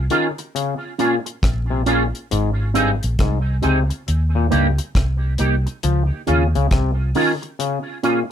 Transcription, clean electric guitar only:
0.10 C#4 F4 G#4
0.39 muted clean electric guitar stroke
0.98 C#4 F4 G#4
1.26 muted clean electric guitar stroke
1.86 C#4 F4 G#4
2.74 C4 D#4 G#4
3.62 C4 D#4 G#4
3.90 muted clean electric guitar stroke
4.50 A#3 D#4 G4
4.78 muted clean electric guitar stroke
5.39 A#3 D#4 G4
5.66 muted clean electric guitar stroke
6.27 C#4 F4 G#4
7.15 C#4 F4 G#4
7.42 muted clean electric guitar stroke
8.03 C#4 F4 G#4

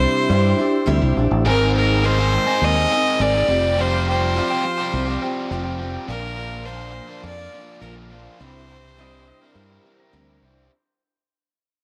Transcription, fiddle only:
Already playing: C5
1.47 A#4
1.77 A#4
2.05 C5
2.64 D#5
3.22 D5
3.81 C5
4.09 C5
6.09 A#4
6.66 C5
7.25 D5
7.81 A#4
8.10 C5

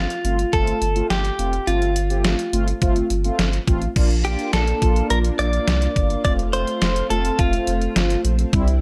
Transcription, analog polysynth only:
0.25 A3 C4 F4
0.53 A3 C4 F4
0.96 A3 C4 F4
1.39 A3 C4 F4
1.67 A3 C4 F4
2.10 A3 C4 G4
2.53 A3 C4 F4
2.82 A3 C4 F4
3.25 A3 C4 F4
3.67 A3 C4 F4
3.96 A#3 D4 F4
4.25 A#3 D4 F4
4.82 A#3 D4 F4
6.25 A3 C4 F4
6.53 A3 C4 F4
7.10 A3 C4 F4
8.53 G3 C4 E4

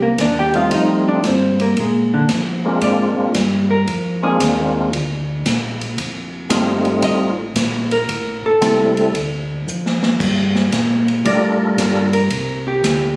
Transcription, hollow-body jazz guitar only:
0.02 A#3 A#4
0.21 D4 D5
0.39 G4 G5
0.56 F4 F5
0.74 D#4 D#5
1.08 D4 D5
1.27 C4 C5
1.61 A#3 A#4
1.80 G#3 G#4
2.13 D3 D4
2.84 D5
3.71 A#4
4.23 G#4
7.04 D#5
7.92 A#4
8.46 A4
11.27 D5
12.13 A#4
12.68 G4

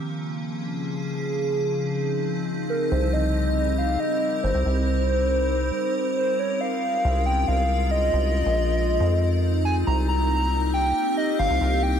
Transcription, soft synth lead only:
2.70 A#4
2.91 C5
3.13 D#5
3.78 F5
4.00 D#5
4.43 C5
6.17 C5
6.39 C#5
6.61 F5
7.26 G5
7.48 F5
7.91 D#5
9.65 G#5
9.87 A#5
10.08 A#5
10.74 G5
11.17 D#5
11.39 F5
11.83 G5

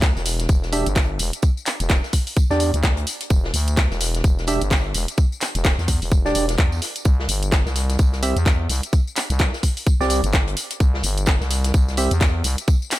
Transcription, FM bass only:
Already playing: D2
0.16 E1
0.49 E1
0.87 G1
1.19 E1
1.80 E1
2.50 E2
2.74 D2
3.30 E1
3.54 D2
3.91 E1
4.24 E1
4.61 G1
4.94 E1
5.55 E1
5.79 E2
6.02 E1
6.35 E1
6.59 E2
7.05 C2
7.29 G1
7.66 C2
7.99 C2
8.36 E2
8.69 C2
9.30 C2
10.00 C2
10.24 G1
10.80 C2
11.04 G1
11.41 C2
11.74 C2
12.11 E2
12.44 C2

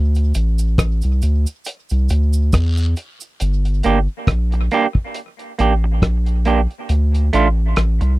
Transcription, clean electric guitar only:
3.84 A#3 D4 G4
4.54 muted clean electric guitar stroke
4.72 A#3 D4 G4
5.59 A#3 D4 G4
5.84 muted clean electric guitar stroke
6.46 A#3 D4 G4
7.33 A3 D4 F4
8.01 muted clean electric guitar stroke

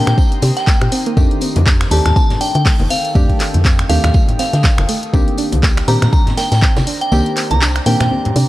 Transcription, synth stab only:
Already playing: D#3 A#3 C4 D4 G4
1.16 D#3 A3 C4 D4 G4
1.91 D#3 A3 C4 D4 G4
3.14 D#3 A3 C4 D4 G4
3.89 D#3 A3 C4 D4 G4
5.13 D#3 A#3 C4 D4 G4
5.87 D#3 A#3 C4 D4 G4
7.11 D#3 A#3 C4 D4 G4
7.86 D#3 A#3 C4 D4 G4

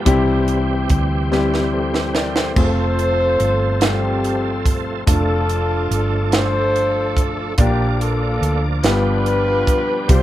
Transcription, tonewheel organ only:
0.05 D#3 G3 C4 G4
0.12 E3
2.57 F3 A3 C4 A4
5.07 F3 A3 D4 A4
7.59 F3 A#3 D4 A4
7.67 D5
8.82 F3 B3 D4 G4
10.07 F3 G3 C4 G4

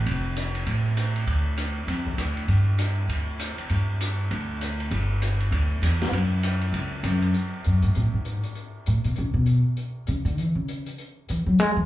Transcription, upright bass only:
0.06 F1
0.66 A1
1.27 D2
1.87 F2
2.17 D2
2.48 G2
3.08 D2
3.58 muted upright bass stroke
3.70 G2
4.31 D2
4.91 G1
5.51 D2
5.82 E2
6.11 F#2
6.72 C#2
7.03 F#2
7.66 F#2
7.83 G#2
7.97 A2
8.14 G#2
8.88 A2
9.05 B2
9.18 C#3
9.34 B2
10.08 C#3
10.25 D3
10.39 E3
10.55 C#3
11.30 E3
11.46 F#3
11.60 G#3
11.77 E3

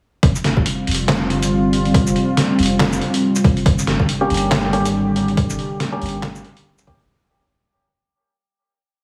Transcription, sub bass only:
0.23 F1
0.87 F1
1.30 G1
2.59 F1
3.66 G1
4.30 G1
4.73 G#1
6.02 G1
6.87 G#1

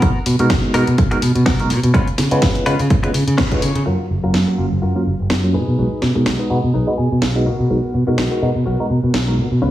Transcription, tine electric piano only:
0.02 G#3 B3 D#4 F#4 A#4
0.39 G#3 B3 D#4 F#4 A#4
0.74 G#3 B3 D#4 F#4 A#4
1.11 G#3 B3 D#4 F#4 A#4
1.59 G#3 B3 D#4 F#4 A#4
1.94 G#3 B3 C#4 F4 B4
2.31 G#3 B3 C#4 F4 B4
2.66 G#3 B3 C#4 F4 B4
3.04 G#3 B3 C#4 F4 B4
3.51 G#3 B3 C#4 F4 B4
3.86 F#3 A#3 C#4 F4 A#4
4.23 F#3 A#3 C#4 A#4 F5
4.58 F#3 A#3 C#4 F4 A#4
4.95 F#3 A#3 C#4 F4 A#4
5.43 F#3 A#3 C#4 F4 A#4
5.78 G#3 B3 D#4 F#4 B4
6.15 G#3 B3 D#4 F#4
6.50 G#3 B3 D#4 F#4 B4
6.87 G#3 B3 D#4 F#4 B4
7.35 G#3 B3 D#4 F#4 B4
7.70 G#3 B3 D#4 F#4 A#4
8.07 G#3 B3 D#4 F#4 A#4
8.42 G#3 B3 D#4 F#4 A#4
8.80 G#3 B3 D#4 F#4 A#4
9.27 G#3 B3 D#4 F#4 A#4
9.62 G#3 B3 C#4 F4 B4

